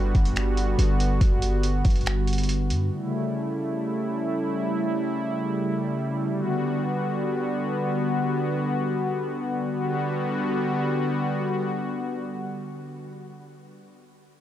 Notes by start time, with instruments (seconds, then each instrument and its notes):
Already playing: 808-style bass G1, analog synth pad D3 G3 B3 F#4
0.15 808-style bass G1, kick, closed hi-hat
0.25 closed hi-hat
0.36 finger snap, closed hi-hat
0.57 closed hi-hat
0.79 808-style bass G1, closed hi-hat
1.00 closed hi-hat
1.21 808-style bass G1, kick, closed hi-hat
1.42 closed hi-hat
1.63 closed hi-hat
1.85 808-style bass G1, kick, closed hi-hat, open hi-hat
1.90 closed hi-hat
1.96 closed hi-hat
2.01 closed hi-hat
2.06 finger snap, closed hi-hat
2.27 closed hi-hat
2.33 closed hi-hat
2.38 closed hi-hat
2.43 closed hi-hat
2.49 closed hi-hat
2.70 808-style bass G2, closed hi-hat
2.91 analog synth pad C#3 G3 A3 E4
6.32 analog synth pad D3 B3 F#4
9.72 analog synth pad D3 G3 B3 F#4